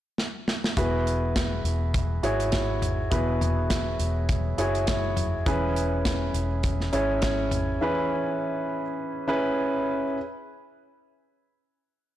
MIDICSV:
0, 0, Header, 1, 4, 480
1, 0, Start_track
1, 0, Key_signature, 4, "minor"
1, 0, Tempo, 587084
1, 628, Time_signature, 4, 2, 24, 8
1, 9944, End_track
2, 0, Start_track
2, 0, Title_t, "Grand piano"
2, 0, Program_c, 0, 0
2, 628, Note_on_c, 0, 64, 72
2, 629, Note_on_c, 0, 66, 69
2, 630, Note_on_c, 0, 68, 64
2, 632, Note_on_c, 0, 47, 58
2, 635, Note_on_c, 0, 71, 82
2, 769, Control_c, 0, 64, 127
2, 1317, Note_off_c, 0, 47, 0
2, 1450, Note_off_c, 0, 64, 0
2, 1450, Note_off_c, 0, 66, 0
2, 1451, Note_off_c, 0, 68, 0
2, 1453, Note_off_c, 0, 71, 0
2, 1824, Note_on_c, 0, 64, 81
2, 1825, Note_on_c, 0, 66, 77
2, 1830, Note_on_c, 0, 68, 76
2, 1830, Note_on_c, 0, 73, 91
2, 2447, Note_off_c, 0, 64, 0
2, 2448, Note_off_c, 0, 66, 0
2, 2450, Note_off_c, 0, 68, 0
2, 2450, Note_off_c, 0, 73, 0
2, 2540, Note_on_c, 0, 64, 71
2, 2542, Note_on_c, 0, 66, 68
2, 2544, Note_on_c, 0, 47, 70
2, 2545, Note_on_c, 0, 68, 68
2, 2548, Note_on_c, 0, 71, 82
2, 3233, Note_off_c, 0, 47, 0
2, 3365, Note_off_c, 0, 64, 0
2, 3366, Note_off_c, 0, 66, 0
2, 3368, Note_off_c, 0, 68, 0
2, 3369, Note_off_c, 0, 71, 0
2, 3745, Note_on_c, 0, 64, 78
2, 3748, Note_on_c, 0, 66, 69
2, 3748, Note_on_c, 0, 68, 78
2, 3752, Note_on_c, 0, 73, 86
2, 4368, Note_off_c, 0, 64, 0
2, 4369, Note_off_c, 0, 66, 0
2, 4369, Note_off_c, 0, 68, 0
2, 4371, Note_off_c, 0, 73, 0
2, 4467, Note_on_c, 0, 61, 80
2, 4468, Note_on_c, 0, 52, 64
2, 4469, Note_on_c, 0, 64, 68
2, 4469, Note_on_c, 0, 68, 75
2, 4473, Note_on_c, 0, 71, 84
2, 4479, Control_c, 0, 64, 0
2, 4618, Control_c, 0, 64, 127
2, 5155, Note_off_c, 0, 52, 0
2, 5289, Note_off_c, 0, 61, 0
2, 5290, Note_off_c, 0, 64, 0
2, 5290, Note_off_c, 0, 68, 0
2, 5292, Note_off_c, 0, 71, 0
2, 5663, Note_on_c, 0, 61, 88
2, 5666, Note_on_c, 0, 64, 81
2, 5669, Note_on_c, 0, 73, 90
2, 5671, Note_on_c, 0, 68, 79
2, 6287, Note_off_c, 0, 61, 0
2, 6288, Note_off_c, 0, 64, 0
2, 6290, Note_off_c, 0, 73, 0
2, 6291, Note_off_c, 0, 68, 0
2, 6386, Note_on_c, 0, 61, 75
2, 6387, Note_on_c, 0, 64, 68
2, 6388, Note_on_c, 0, 52, 69
2, 6390, Note_on_c, 0, 68, 65
2, 6396, Note_on_c, 0, 71, 86
2, 7076, Note_off_c, 0, 52, 0
2, 7209, Note_off_c, 0, 61, 0
2, 7210, Note_off_c, 0, 64, 0
2, 7211, Note_off_c, 0, 68, 0
2, 7214, Note_off_c, 0, 71, 0
2, 7584, Note_on_c, 0, 61, 86
2, 7586, Note_on_c, 0, 64, 74
2, 7590, Note_on_c, 0, 71, 93
2, 7591, Note_on_c, 0, 68, 67
2, 8209, Note_off_c, 0, 61, 0
2, 8209, Note_off_c, 0, 64, 0
2, 8212, Note_off_c, 0, 68, 0
2, 8212, Note_off_c, 0, 71, 0
2, 8320, Control_c, 0, 64, 0
2, 9944, End_track
3, 0, Start_track
3, 0, Title_t, "Fingered electric bass"
3, 0, Program_c, 1, 33
3, 631, Note_on_c, 1, 28, 81
3, 1317, Note_off_c, 1, 28, 0
3, 1344, Note_on_c, 1, 28, 84
3, 1793, Note_off_c, 1, 28, 0
3, 1827, Note_on_c, 1, 32, 86
3, 2514, Note_off_c, 1, 32, 0
3, 2549, Note_on_c, 1, 28, 89
3, 3235, Note_off_c, 1, 28, 0
3, 3269, Note_on_c, 1, 28, 76
3, 3716, Note_off_c, 1, 28, 0
3, 3746, Note_on_c, 1, 30, 71
3, 4434, Note_off_c, 1, 30, 0
3, 4468, Note_on_c, 1, 28, 107
3, 5155, Note_off_c, 1, 28, 0
3, 5186, Note_on_c, 1, 28, 93
3, 5634, Note_off_c, 1, 28, 0
3, 5670, Note_on_c, 1, 32, 74
3, 6356, Note_off_c, 1, 32, 0
3, 9944, End_track
4, 0, Start_track
4, 0, Title_t, "Drums"
4, 149, Note_on_c, 9, 38, 58
4, 231, Note_off_c, 9, 38, 0
4, 391, Note_on_c, 9, 38, 75
4, 472, Note_off_c, 9, 38, 0
4, 526, Note_on_c, 9, 38, 88
4, 608, Note_off_c, 9, 38, 0
4, 629, Note_on_c, 9, 36, 105
4, 629, Note_on_c, 9, 42, 71
4, 711, Note_off_c, 9, 36, 0
4, 711, Note_off_c, 9, 42, 0
4, 875, Note_on_c, 9, 42, 55
4, 957, Note_off_c, 9, 42, 0
4, 1110, Note_on_c, 9, 38, 107
4, 1111, Note_on_c, 9, 36, 99
4, 1111, Note_on_c, 9, 42, 83
4, 1192, Note_off_c, 9, 38, 0
4, 1193, Note_off_c, 9, 36, 0
4, 1193, Note_off_c, 9, 42, 0
4, 1350, Note_on_c, 9, 42, 56
4, 1432, Note_off_c, 9, 42, 0
4, 1587, Note_on_c, 9, 42, 65
4, 1589, Note_on_c, 9, 36, 92
4, 1669, Note_off_c, 9, 42, 0
4, 1671, Note_off_c, 9, 36, 0
4, 1827, Note_on_c, 9, 42, 58
4, 1909, Note_off_c, 9, 42, 0
4, 1961, Note_on_c, 9, 42, 48
4, 2043, Note_off_c, 9, 42, 0
4, 2060, Note_on_c, 9, 42, 77
4, 2065, Note_on_c, 9, 38, 89
4, 2070, Note_on_c, 9, 36, 79
4, 2142, Note_off_c, 9, 42, 0
4, 2147, Note_off_c, 9, 38, 0
4, 2151, Note_off_c, 9, 36, 0
4, 2306, Note_on_c, 9, 43, 50
4, 2309, Note_on_c, 9, 42, 65
4, 2388, Note_off_c, 9, 43, 0
4, 2391, Note_off_c, 9, 42, 0
4, 2547, Note_on_c, 9, 42, 78
4, 2548, Note_on_c, 9, 36, 90
4, 2628, Note_off_c, 9, 42, 0
4, 2629, Note_off_c, 9, 36, 0
4, 2790, Note_on_c, 9, 43, 56
4, 2794, Note_on_c, 9, 42, 61
4, 2872, Note_off_c, 9, 43, 0
4, 2876, Note_off_c, 9, 42, 0
4, 3026, Note_on_c, 9, 38, 108
4, 3026, Note_on_c, 9, 42, 97
4, 3029, Note_on_c, 9, 36, 107
4, 3108, Note_off_c, 9, 38, 0
4, 3108, Note_off_c, 9, 42, 0
4, 3111, Note_off_c, 9, 36, 0
4, 3266, Note_on_c, 9, 42, 63
4, 3348, Note_off_c, 9, 42, 0
4, 3506, Note_on_c, 9, 42, 71
4, 3508, Note_on_c, 9, 36, 93
4, 3588, Note_off_c, 9, 42, 0
4, 3590, Note_off_c, 9, 36, 0
4, 3746, Note_on_c, 9, 42, 60
4, 3828, Note_off_c, 9, 42, 0
4, 3882, Note_on_c, 9, 42, 43
4, 3964, Note_off_c, 9, 42, 0
4, 3982, Note_on_c, 9, 42, 72
4, 3987, Note_on_c, 9, 38, 93
4, 3990, Note_on_c, 9, 36, 89
4, 4064, Note_off_c, 9, 42, 0
4, 4069, Note_off_c, 9, 38, 0
4, 4071, Note_off_c, 9, 36, 0
4, 4224, Note_on_c, 9, 43, 56
4, 4227, Note_on_c, 9, 42, 63
4, 4306, Note_off_c, 9, 43, 0
4, 4308, Note_off_c, 9, 42, 0
4, 4467, Note_on_c, 9, 36, 108
4, 4467, Note_on_c, 9, 42, 76
4, 4549, Note_off_c, 9, 36, 0
4, 4549, Note_off_c, 9, 42, 0
4, 4712, Note_on_c, 9, 42, 62
4, 4794, Note_off_c, 9, 42, 0
4, 4948, Note_on_c, 9, 38, 112
4, 4949, Note_on_c, 9, 36, 113
4, 4949, Note_on_c, 9, 42, 88
4, 5030, Note_off_c, 9, 38, 0
4, 5030, Note_off_c, 9, 42, 0
4, 5031, Note_off_c, 9, 36, 0
4, 5187, Note_on_c, 9, 42, 59
4, 5268, Note_off_c, 9, 42, 0
4, 5424, Note_on_c, 9, 42, 72
4, 5427, Note_on_c, 9, 36, 92
4, 5506, Note_off_c, 9, 42, 0
4, 5509, Note_off_c, 9, 36, 0
4, 5563, Note_on_c, 9, 38, 33
4, 5645, Note_off_c, 9, 38, 0
4, 5664, Note_on_c, 9, 42, 58
4, 5746, Note_off_c, 9, 42, 0
4, 5901, Note_on_c, 9, 42, 77
4, 5906, Note_on_c, 9, 38, 100
4, 5909, Note_on_c, 9, 36, 89
4, 5983, Note_off_c, 9, 42, 0
4, 5988, Note_off_c, 9, 38, 0
4, 5991, Note_off_c, 9, 36, 0
4, 6143, Note_on_c, 9, 43, 58
4, 6146, Note_on_c, 9, 42, 69
4, 6225, Note_off_c, 9, 43, 0
4, 6228, Note_off_c, 9, 42, 0
4, 9944, End_track
0, 0, End_of_file